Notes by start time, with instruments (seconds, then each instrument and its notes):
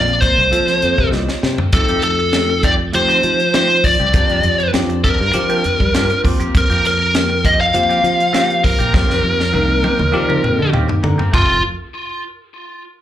Already playing: fingered electric bass A#1, tine electric piano A#3 C4 F4 A#4, lead electric guitar D5
0.08 closed hi-hat
0.21 lead electric guitar C5, kick, closed hi-hat
0.38 fingered electric bass C2
0.51 fingered electric bass F3, tine electric piano A#3 C4 F4 A4, closed hi-hat
0.68 snare, closed hi-hat
0.82 fingered electric bass F2, closed hi-hat
0.98 fingered electric bass C3, kick
1.11 fingered electric bass C2, tine electric piano A#3 C4 F4 G4 D#5, snare
1.28 snare
1.43 fingered electric bass C3, tine electric piano G5, snare
1.58 muted fingered electric bass stroke, floor tom
1.73 fingered electric bass F2, clean electric guitar D#3 A3 C4 G4, tine electric piano A3 C4 D#4 G4, lead electric guitar A4, kick, closed hi-hat
1.88 fingered electric bass F2, clean electric guitar D#3 A3 C4 G4, closed hi-hat
2.02 lead electric guitar A4, muted clean electric guitar stroke, closed hi-hat
2.19 muted clean electric guitar stroke
2.32 tine electric piano A3 C4 D#4 G4, snare, closed hi-hat
2.49 muted clean electric guitar stroke
2.63 clean electric guitar D#3 A3 C4 G4, lead electric guitar D5, kick, closed hi-hat
2.79 muted clean electric guitar stroke
2.92 fingered electric bass F3, tine electric piano A3 C4 D#4 G4, lead electric guitar C5, muted clean electric guitar stroke, closed hi-hat
3.08 clean electric guitar D#3 A3 C4 G4, snare, closed hi-hat
3.23 fingered electric bass F3, muted clean electric guitar stroke, closed hi-hat
3.40 closed hi-hat
3.53 clean electric guitar D#3 A3 C4 G4, tine electric piano A3 C4 D#4 F4, lead electric guitar C5, snare, closed hi-hat
3.69 muted clean electric guitar stroke, closed hi-hat
3.84 lead electric guitar D5, muted clean electric guitar stroke, kick, open hi-hat
4.00 fingered electric bass C2, clean electric guitar A3 C4 G4, closed hi-hat
4.13 fingered electric bass F2, clean electric guitar F3 A#3 D4 G4, tine electric piano C4 D4 F4 G4, kick, closed hi-hat
4.29 clean electric guitar F3 A#3 D4 G4, closed hi-hat
4.43 fingered electric bass F2, closed hi-hat
4.60 muted clean electric guitar stroke, closed hi-hat
4.73 fingered electric bass F2, tine electric piano C4 D4 F4 G4, snare, closed hi-hat
4.89 muted clean electric guitar stroke, closed hi-hat
5.04 clean electric guitar F3 A#3 D4 G4, lead electric guitar A#4, kick, closed hi-hat
5.20 fingered electric bass G2, muted clean electric guitar stroke
5.32 fingered electric bass F3, tine electric piano C4 D4 F4 G4, muted clean electric guitar stroke, closed hi-hat
5.50 clean electric guitar F3 A#3 D4 G4, closed hi-hat
5.64 fingered electric bass F2, muted clean electric guitar stroke, closed hi-hat
5.80 fingered electric bass G3, kick
5.93 fingered electric bass G2, clean electric guitar F3 A#3 D4 G4, tine electric piano C4 D4 F4 A#4, snare, closed hi-hat
6.10 muted clean electric guitar stroke, closed hi-hat
6.23 fingered electric bass F2, tine electric piano A#3 C4 F4 G4, muted clean electric guitar stroke, kick, open hi-hat
6.40 clean electric guitar A#3 C4 G4, muted fingered electric bass stroke, closed hi-hat
6.55 fingered electric bass F2, lead electric guitar A#4, kick, closed hi-hat
6.70 fingered electric bass F2, clean electric guitar F3 A#3 C4 G4, closed hi-hat
6.84 lead electric guitar A#4, muted clean electric guitar stroke, snare, closed hi-hat
7.00 muted clean electric guitar stroke
7.14 tine electric piano A#3 C4 F4 G4, snare, closed hi-hat
7.29 muted clean electric guitar stroke
7.44 clean electric guitar F3 A#3 C4 G4, lead electric guitar D#5, kick, closed hi-hat
7.59 lead electric guitar F5, muted clean electric guitar stroke
7.74 fingered electric bass F3, tine electric piano A#3 C4 F4 G4, muted clean electric guitar stroke, closed hi-hat
7.89 clean electric guitar F3 A#3 C4 G4, closed hi-hat
8.03 fingered electric bass F3, muted clean electric guitar stroke, closed hi-hat
8.20 closed hi-hat
8.32 clean electric guitar F3 A#3 C4 G4, tine electric piano A#3 C4 F4 G4, snare, closed hi-hat
8.49 muted clean electric guitar stroke, closed hi-hat
8.63 lead electric guitar A#4, muted clean electric guitar stroke, kick, open hi-hat
8.79 fingered electric bass A#1, clean electric guitar A#3 C4 G4, closed hi-hat
8.93 fingered electric bass F2, clean electric guitar D#3 A#3 C4 G4, tine electric piano A#3 C4 D#4 G4, kick, snare
9.09 clean electric guitar D#3 A#3 C4 G4, snare
9.23 fingered electric bass F2, muted clean electric guitar stroke
9.39 muted clean electric guitar stroke, snare
9.53 fingered electric bass C2, tine electric piano A#3 C4 D#4 A#4, high tom
9.69 muted clean electric guitar stroke
9.83 clean electric guitar D#3 A#3 C4 G4, tine electric piano D#5, high tom
9.99 fingered electric bass D#2, muted clean electric guitar stroke, mid tom
10.12 fingered electric bass F3, tine electric piano A#3 C4 D#4 G4 D5, muted clean electric guitar stroke
10.29 clean electric guitar D#3 A#3 C4 G4, mid tom
10.43 fingered electric bass F2, tine electric piano D#5, muted clean electric guitar stroke, mid tom
10.59 fingered electric bass D3
10.72 fingered electric bass D#2, clean electric guitar D#3 A#3 C4 G4, tine electric piano A#3 C4 D#4 G4 F5, mid tom
10.88 tine electric piano G5, muted clean electric guitar stroke, floor tom
11.03 fingered electric bass D3, tine electric piano A#5, muted clean electric guitar stroke, floor tom
11.18 clean electric guitar A#3 C4 G4, muted fingered electric bass stroke, floor tom
11.31 fingered electric bass F1, clean electric guitar A3 C4 F4, tine electric piano A3 C4 F4 A4, lead electric guitar F4, kick, floor tom, splash